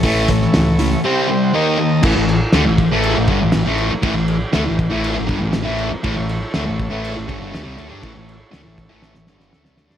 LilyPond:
<<
  \new Staff \with { instrumentName = "Transistor combo organ" } { \time 4/4 \key a \mixolydian \tempo 4 = 120 << { r2 r8 e''16 fis''16 g''8 a''8 | r1 | r1 | r1 |
r1 | } \\ { <e' a' cis''>2 <c' g' c''>4 <dis' ais' dis''>4 | r1 | r1 | <e' a' cis''>1~ |
<e' a' cis''>1 | } >> }
  \new Staff \with { instrumentName = "Distorted electric guitar" } { \clef bass \time 4/4 \key a \mixolydian <a, e a>8 <a, e>8 <a, e>8 <a, e>8 <c g c'>8 <c g>8 <dis ais dis'>8 <dis ais>8 | <a, e>16 <a, e>8 r16 <d a>16 <a, e>8 <a, e a>8 <a, e>16 <g, d>16 <a, e>16 <a, e>16 <a, e a>8 r16 | <a, e>16 <a, e>8 r16 <d a>16 <a, e>8 <a, e a>8 <a, e>16 <g, d>16 <a, e>16 <a, e>16 <a, e a>8 r16 | <a, e>16 <a, e>8 r16 <d a>16 <a, e>8 <a, e a>8 <a, e>16 <g, d>16 <g, d>16 <d a>16 <c g>16 <d a>16 <g d'>16 |
<a, e>16 <a, e>8 r16 <d a>16 <a, e>8 <a, e a>8 <a, e>16 <g, d>16 <g, d>16 <d a>16 <c g>16 <d a>16 <g d'>16 | }
  \new Staff \with { instrumentName = "Fingered electric bass" } { \clef bass \time 4/4 \key a \mixolydian a,,4 cis,4 r2 | a,,16 a,,8 r16 d,16 a,,8 a,,8 a,,16 g,,16 a,,16 a,,16 a,,8 r16 | a,,16 a,,8 r16 d,16 a,,8 a,,8 a,,16 g,,16 a,,16 a,,16 a,,8 r16 | a,,16 a,,8 r16 d,16 a,,8 a,,8 a,,16 g,,16 g,,16 d,16 c,16 d,16 g,16 |
a,,16 a,,8 r16 d,16 a,,8 a,,8 a,,16 g,,16 g,,16 d,16 c,16 d,16 g,16 | }
  \new DrumStaff \with { instrumentName = "Drums" } \drummode { \time 4/4 <hho bd>8 <hho bd>16 sn16 <hho sn>8 hho8 r4 r4 | <cymc bd>8 cymc8 <cymc sn>8 <cymc bd>8 cymc8 <cymc bd>8 <cymc sn>8 cymc8 | <cymc bd>8 cymc8 <cymc sn>8 <cymc bd>8 cymc8 <cymc bd>8 <cymc sn>8 cymc8 | <cymc bd>8 cymc8 <cymc sn>8 <cymc bd>8 cymc8 <cymc bd>8 <cymc sn>8 cymc8 |
<cymc bd>8 cymc8 <cymc sn>8 <cymc bd>8 sn16 sn16 sn16 sn16 sn16 sn16 sn16 sn16 | }
>>